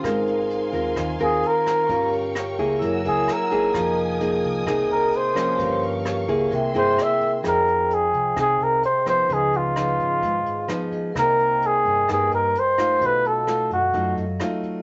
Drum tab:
HH |xxxxxxxx|xxxxxxxx|xxxxxxxx|xxxxxxxx|
SD |r---r--r|--r---r-|r---r--r|--r---r-|
BD |o--oo--o|o--oo--o|o--oo--o|o--oo--o|

HH |xxxxxxxx|xxxxxxxx|xxxxxxxx|xxxxxxxx|
SD |r---r--r|--r---r-|r---r--r|--r---r-|
BD |o--oo--o|o--oo--o|o--oo--o|o--oo--o|